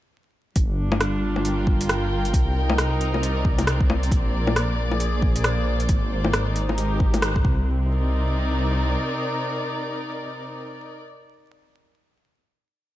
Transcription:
0.56 G1 G3, kick, closed hi-hat
0.69 D4
0.89 F4, low bongo
1.00 cross-stick, closed hi-hat
1.36 A#4 G5, low bongo
1.45 closed hi-hat
1.67 kick
1.81 closed hi-hat
1.89 cross-stick, closed hi-hat
2.25 closed hi-hat
2.34 C2 C3, kick, closed hi-hat
2.55 C4 D#4
2.70 low bongo
2.78 cross-stick, closed hi-hat
3.01 closed hi-hat
3.14 D5, low bongo
3.23 closed hi-hat
3.45 kick
3.59 closed hi-hat, low bongo
3.67 cross-stick, closed hi-hat
3.81 kick
3.90 low bongo
4.03 closed hi-hat
4.11 A#1 A#2, kick, closed hi-hat
4.47 A#3, low bongo
4.56 cross-stick, closed hi-hat
4.91 G#4 C5, low bongo
5.00 closed hi-hat
5.22 kick
5.36 closed hi-hat
5.44 cross-stick, closed hi-hat
5.80 closed hi-hat
5.89 G#1 G#3, kick, closed hi-hat
6.24 low bongo
6.29 D#4
6.33 cross-stick, closed hi-hat
6.56 closed hi-hat
6.69 G4 A#4, low bongo
6.78 closed hi-hat
7.00 kick
7.14 closed hi-hat, low bongo
7.22 cross-stick, closed hi-hat
7.36 kick
7.44 C2 C3, kick
7.52 C4
7.82 D#4
7.86 A#4
7.94 D5

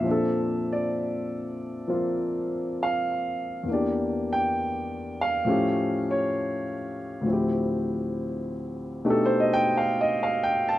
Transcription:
Already playing: E5
0.00 A#2 F3
0.06 C4 D4
0.11 A4
0.73 D5
1.87 F3 A#3 C4 F4
2.83 F5
3.63 E2 E3
3.68 A#3 D4
3.73 G4 D5
4.33 G5
5.21 F5
5.45 A2 F3 A3
5.49 C#4 G4
6.11 C#5
7.21 D2 A2
7.26 F3 C4
7.30 E4 G4
9.05 B2 A3 D4 D#4 G4
9.10 A4
9.26 C5
9.40 D#5
9.53 G5
9.77 F5
10.01 D#5
10.23 F5
10.43 G5
10.69 A5

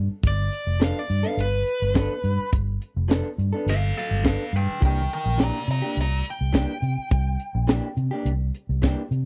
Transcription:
0.09 muted fingered electric bass stroke
0.23 G1 D5, kick, closed hi-hat
0.52 closed hi-hat
0.67 F1
0.80 F3 B3 D4 A4, snare, closed hi-hat
0.84 F5
0.99 D5
1.10 G2, closed hi-hat
1.23 B3 D4 A4
1.28 F5
1.37 G1 B4, closed hi-hat
1.67 closed hi-hat
1.82 G1
1.94 F3 B3 D4 A4, kick, snare, closed hi-hat
2.24 G2, closed hi-hat
2.40 muted fingered electric bass stroke
2.53 G1, kick, closed hi-hat
2.82 closed hi-hat
2.96 F1
3.08 F3 B3 D4 A4, snare, closed hi-hat
3.38 G2, closed hi-hat
3.53 B3 D4 A4
3.66 G1 A4 F5, closed hi-hat
3.97 A4 F5, closed hi-hat
4.11 G1
4.24 F3 B3 D4 A4 F5, kick, snare, closed hi-hat
4.53 G2 B4 G5, closed hi-hat
4.69 muted fingered electric bass stroke
4.80 C2 E3 A#3 D4 G4, kick, closed hi-hat
4.85 A#4 G5
5.11 A#4 G5, closed hi-hat
5.26 A#1
5.38 E3 A#3 D4 G4, snare, closed hi-hat
5.43 D5 A#5
5.68 C3 D5 A#5, closed hi-hat
5.82 A#3 D4 G4
5.97 C2 D5, closed hi-hat
6.01 A#5
6.25 closed hi-hat
6.30 G5
6.41 C2
6.53 E3 A#3 D4 G4, kick, snare, closed hi-hat
6.82 C3, closed hi-hat
6.97 muted fingered electric bass stroke
7.11 C2, kick, closed hi-hat
7.40 closed hi-hat
7.55 A#1
7.67 E3 A#3 D4 G4, snare, closed hi-hat
7.97 C3, closed hi-hat
8.11 A#3 D4 G4
8.25 C2, closed hi-hat
8.55 closed hi-hat
8.69 C2
8.82 E3 A#3 D4 G4, kick, snare, closed hi-hat
9.11 C3, closed hi-hat

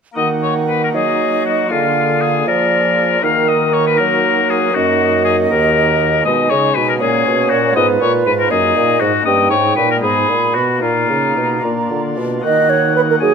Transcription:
0.13 A#3 D#4 F#4
0.17 D#3 D#5 F#5
0.43 C#5
0.69 B4
0.84 A#4
0.94 F#3 G#4 D#5
1.46 F#4
1.66 A#3 F4 G#4
1.71 D3 F4 F5
2.22 G#4
2.46 F3 A#4 D5
3.19 A#3 D#4 F#4
3.23 D#3 A#4 F5
3.48 D#5
3.74 C#5
3.87 B4
3.98 F#3 A#4
4.50 G#4
4.71 A#3 D#4 F#4
4.75 F#2 F#4 D#5
5.25 G#4
5.50 D#2 A#4
6.22 G#3 D#4 G#4 D#5
6.26 B2
6.50 C#3 C#5
6.75 B2 B4
6.89 A#4
6.97 A#2 A#3 C#4 F#4 G#4 C#5
7.02 A#2
7.26 B2
7.50 A#2 F#4
7.70 G#3 B3 F4
7.75 G#2 B4 D#5
8.00 A#2 C#5
8.26 G#2 B4
8.40 A#4
8.47 A#3 D#4
8.51 F#2 G#4 D#5
8.75 A#2
9.00 G#2 F#4
9.20 A#3 C#4 D#4
9.25 G2 D#5 G5
9.50 G#2 C#5
9.76 A#2 B4
9.91 A#4
9.96 G#3 B3 D#4
10.02 G#2 G#4 B5
10.28 A#2
10.55 B2 F#4
10.76 A#3 D#4
10.80 A#2 F4 A#5
11.08 C#3
11.36 B2
11.58 A#3 D4 F4
11.63 A#2
11.91 D3
12.18 B2
12.40 A#3 D#4 F#4 F#5
12.44 D#3 D#5
12.70 C#5
12.96 B4
13.10 A#4
13.20 F#3 G#4 G#5

